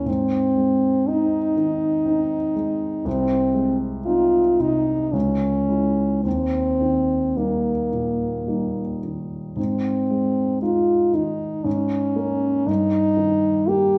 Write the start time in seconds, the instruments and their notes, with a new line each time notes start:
Already playing: french horn C#4
0.06 grand piano G#2, french horn C4
0.57 grand piano G#3
1.08 grand piano C4 D#4, french horn D#4
1.57 grand piano D#3
2.05 grand piano C4 D#4
2.56 grand piano G#3
3.05 grand piano C2, french horn C4
3.54 grand piano G#3
4.05 grand piano C4 D#4, french horn F4
4.59 grand piano C3, french horn D#4
5.13 grand piano C#2, french horn C#4
5.68 grand piano G#3 E4
6.24 grand piano D#2, french horn C4
6.80 grand piano D#3
7.36 grand piano G3 D#4, french horn A#3
7.92 grand piano A#2
8.48 grand piano G3 D#4
9.03 grand piano D#3
9.57 grand piano G#2, french horn C4
10.11 grand piano G#3
10.62 grand piano G#3 D#4, french horn F4
11.13 grand piano D#3, french horn D#4
11.64 grand piano G#2, french horn C#4
12.16 grand piano A#3 C#4
12.67 grand piano G2, french horn D#4
13.17 grand piano D#3
13.68 grand piano A#3, french horn G4